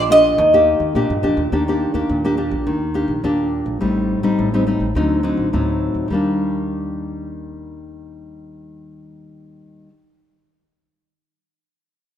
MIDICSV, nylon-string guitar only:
0, 0, Header, 1, 2, 480
1, 0, Start_track
1, 0, Key_signature, -3, "major"
1, 0, Tempo, 572519
1, 1279, Time_signature, 4, 2, 24, 8
1, 10209, End_track
2, 0, Start_track
2, 0, Title_t, "Nylon-string guitar"
2, 0, Program_c, 0, 24
2, 0, Note_on_c, 0, 46, 52
2, 82, Note_on_c, 0, 58, 46
2, 87, Note_on_c, 0, 62, 51
2, 91, Note_on_c, 0, 67, 49
2, 299, Note_off_c, 0, 46, 0
2, 308, Note_off_c, 0, 58, 0
2, 310, Note_off_c, 0, 62, 0
2, 312, Note_off_c, 0, 67, 0
2, 319, Note_on_c, 0, 51, 58
2, 448, Note_on_c, 0, 58, 64
2, 454, Note_on_c, 0, 67, 81
2, 765, Note_off_c, 0, 58, 0
2, 769, Note_off_c, 0, 67, 0
2, 775, Note_off_c, 0, 51, 0
2, 798, Note_on_c, 0, 46, 58
2, 804, Note_on_c, 0, 62, 54
2, 805, Note_on_c, 0, 58, 56
2, 807, Note_on_c, 0, 67, 64
2, 942, Note_off_c, 0, 58, 0
2, 943, Note_off_c, 0, 62, 0
2, 943, Note_off_c, 0, 67, 0
2, 1029, Note_on_c, 0, 58, 54
2, 1032, Note_on_c, 0, 62, 55
2, 1038, Note_on_c, 0, 67, 65
2, 1189, Note_off_c, 0, 58, 0
2, 1190, Note_off_c, 0, 62, 0
2, 1192, Note_off_c, 0, 67, 0
2, 1254, Note_off_c, 0, 46, 0
2, 1277, Note_on_c, 0, 51, 49
2, 1279, Note_on_c, 0, 58, 54
2, 1280, Note_on_c, 0, 62, 52
2, 1283, Note_on_c, 0, 67, 61
2, 1359, Note_off_c, 0, 58, 0
2, 1361, Note_off_c, 0, 62, 0
2, 1361, Note_off_c, 0, 67, 0
2, 1409, Note_on_c, 0, 58, 55
2, 1412, Note_on_c, 0, 62, 55
2, 1418, Note_on_c, 0, 67, 61
2, 1604, Note_off_c, 0, 58, 0
2, 1606, Note_off_c, 0, 62, 0
2, 1608, Note_off_c, 0, 67, 0
2, 1627, Note_on_c, 0, 58, 56
2, 1633, Note_on_c, 0, 62, 61
2, 1634, Note_on_c, 0, 67, 60
2, 1732, Note_off_c, 0, 51, 0
2, 1758, Note_on_c, 0, 46, 51
2, 1833, Note_off_c, 0, 58, 0
2, 1834, Note_off_c, 0, 62, 0
2, 1837, Note_off_c, 0, 67, 0
2, 1883, Note_on_c, 0, 58, 58
2, 1887, Note_on_c, 0, 62, 60
2, 1891, Note_on_c, 0, 67, 69
2, 1961, Note_off_c, 0, 58, 0
2, 1963, Note_off_c, 0, 62, 0
2, 1965, Note_off_c, 0, 67, 0
2, 1989, Note_on_c, 0, 58, 50
2, 1994, Note_on_c, 0, 62, 50
2, 1995, Note_on_c, 0, 67, 56
2, 2212, Note_off_c, 0, 46, 0
2, 2236, Note_on_c, 0, 51, 57
2, 2301, Note_off_c, 0, 58, 0
2, 2302, Note_off_c, 0, 62, 0
2, 2304, Note_off_c, 0, 67, 0
2, 2467, Note_on_c, 0, 58, 50
2, 2472, Note_on_c, 0, 62, 52
2, 2474, Note_on_c, 0, 67, 63
2, 2612, Note_off_c, 0, 58, 0
2, 2613, Note_off_c, 0, 62, 0
2, 2615, Note_off_c, 0, 67, 0
2, 2690, Note_off_c, 0, 51, 0
2, 2715, Note_on_c, 0, 46, 55
2, 2717, Note_on_c, 0, 62, 51
2, 2718, Note_on_c, 0, 58, 57
2, 2723, Note_on_c, 0, 67, 63
2, 3155, Note_off_c, 0, 58, 0
2, 3157, Note_off_c, 0, 62, 0
2, 3158, Note_off_c, 0, 67, 0
2, 3171, Note_off_c, 0, 46, 0
2, 3191, Note_on_c, 0, 55, 56
2, 3192, Note_on_c, 0, 45, 46
2, 3194, Note_on_c, 0, 60, 48
2, 3198, Note_on_c, 0, 63, 50
2, 3513, Note_off_c, 0, 55, 0
2, 3513, Note_off_c, 0, 60, 0
2, 3517, Note_off_c, 0, 63, 0
2, 3548, Note_on_c, 0, 55, 62
2, 3553, Note_on_c, 0, 60, 59
2, 3554, Note_on_c, 0, 63, 60
2, 3648, Note_off_c, 0, 45, 0
2, 3674, Note_on_c, 0, 45, 48
2, 3752, Note_off_c, 0, 55, 0
2, 3753, Note_off_c, 0, 60, 0
2, 3755, Note_off_c, 0, 63, 0
2, 3803, Note_on_c, 0, 55, 55
2, 3807, Note_on_c, 0, 60, 61
2, 3813, Note_on_c, 0, 63, 59
2, 3879, Note_off_c, 0, 55, 0
2, 3882, Note_off_c, 0, 60, 0
2, 3883, Note_off_c, 0, 63, 0
2, 3913, Note_on_c, 0, 55, 52
2, 3918, Note_on_c, 0, 60, 44
2, 3923, Note_on_c, 0, 63, 53
2, 4067, Note_off_c, 0, 55, 0
2, 4070, Note_off_c, 0, 60, 0
2, 4072, Note_off_c, 0, 63, 0
2, 4129, Note_off_c, 0, 45, 0
2, 4159, Note_on_c, 0, 50, 52
2, 4159, Note_on_c, 0, 54, 51
2, 4163, Note_on_c, 0, 60, 55
2, 4163, Note_on_c, 0, 63, 64
2, 4356, Note_off_c, 0, 54, 0
2, 4358, Note_off_c, 0, 60, 0
2, 4359, Note_off_c, 0, 63, 0
2, 4387, Note_on_c, 0, 54, 58
2, 4391, Note_on_c, 0, 60, 50
2, 4396, Note_on_c, 0, 63, 64
2, 4591, Note_off_c, 0, 54, 0
2, 4594, Note_off_c, 0, 60, 0
2, 4594, Note_off_c, 0, 63, 0
2, 4612, Note_off_c, 0, 50, 0
2, 4635, Note_on_c, 0, 45, 54
2, 4638, Note_on_c, 0, 54, 54
2, 4643, Note_on_c, 0, 60, 47
2, 4643, Note_on_c, 0, 63, 54
2, 5077, Note_off_c, 0, 54, 0
2, 5078, Note_off_c, 0, 60, 0
2, 5080, Note_off_c, 0, 63, 0
2, 5091, Note_off_c, 0, 45, 0
2, 5096, Note_on_c, 0, 51, 49
2, 5118, Note_on_c, 0, 55, 49
2, 5134, Note_on_c, 0, 58, 53
2, 5148, Note_on_c, 0, 62, 51
2, 8285, Note_off_c, 0, 51, 0
2, 8296, Note_off_c, 0, 55, 0
2, 8304, Note_off_c, 0, 58, 0
2, 8311, Note_off_c, 0, 62, 0
2, 10209, End_track
0, 0, End_of_file